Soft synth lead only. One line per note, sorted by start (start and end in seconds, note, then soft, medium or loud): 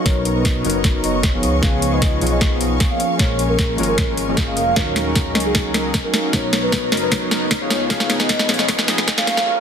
0.06 0.37 C#5 loud
0.36 0.66 B4 loud
0.75 0.98 B4 medium
1.34 1.57 C#5 medium
1.92 2.23 D#5 medium
2.32 2.55 D#5 medium
2.90 3.14 F5 medium
3.19 3.43 C#5 loud
3.49 3.80 A#4 medium
3.88 4.12 A#4 medium
4.47 4.78 F5 loud
4.76 5.00 A#4 loud
5.06 5.37 G#4 loud
5.45 5.69 G#4 loud
6.04 6.35 A#4 loud
6.33 6.57 C#5 loud
6.63 6.94 B4 loud
7.02 7.25 B4 loud
7.61 7.84 C#5 loud
7.90 8.14 F5 loud
8.20 8.51 D#5 loud
8.59 8.82 D#5 loud
9.18 9.41 F5 loud